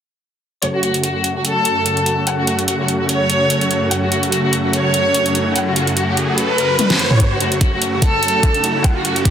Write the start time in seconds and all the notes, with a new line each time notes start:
0.62 F#2 C#3 A3 F#4 C#5, closed hi-hat
0.74 F#4
0.83 F#4, closed hi-hat
0.94 closed hi-hat
1.04 F#4, closed hi-hat
1.15 F#4
1.24 closed hi-hat
1.35 F#4
1.45 A4, closed hi-hat
1.65 closed hi-hat
1.86 closed hi-hat
1.97 closed hi-hat
2.06 closed hi-hat
2.27 F#5, closed hi-hat
2.38 F#4
2.47 F#4, closed hi-hat
2.59 closed hi-hat
2.68 F#4, closed hi-hat
2.79 F#4
2.88 closed hi-hat
3.00 F#4
3.09 C#5, closed hi-hat
3.30 closed hi-hat
3.50 closed hi-hat
3.61 closed hi-hat
3.71 closed hi-hat
3.91 F#5, closed hi-hat, riser
4.02 F#4
4.12 F#4, closed hi-hat
4.23 closed hi-hat
4.32 F#4, closed hi-hat
4.44 F#4
4.53 closed hi-hat
4.64 F#4
4.73 C#5, closed hi-hat
4.94 closed hi-hat
5.14 closed hi-hat
5.26 closed hi-hat
5.35 closed hi-hat
5.56 F#5, closed hi-hat
5.67 F#4
5.76 F#4, closed hi-hat
5.87 closed hi-hat
5.97 F#4, closed hi-hat
6.08 F#4
6.17 closed hi-hat
6.28 F#4
6.38 B4, closed hi-hat
6.58 closed hi-hat
6.79 closed hi-hat, high tom
6.90 snare, closed hi-hat
6.99 closed hi-hat
7.11 mid tom
7.20 F#2 C#3 A3 F#4 C#5, kick, closed hi-hat, riser
7.31 F#4
7.40 F#4, closed hi-hat
7.52 closed hi-hat
7.61 F#4, kick, closed hi-hat
7.72 F#4
7.82 closed hi-hat
7.93 F#4
8.02 A4, kick, closed hi-hat
8.23 closed hi-hat
8.28 closed hi-hat
8.43 kick, closed hi-hat
8.54 closed hi-hat
8.64 closed hi-hat
8.84 F#5, kick, closed hi-hat
8.96 F#4
9.05 F#4, closed hi-hat
9.16 closed hi-hat
9.25 F#4, kick, closed hi-hat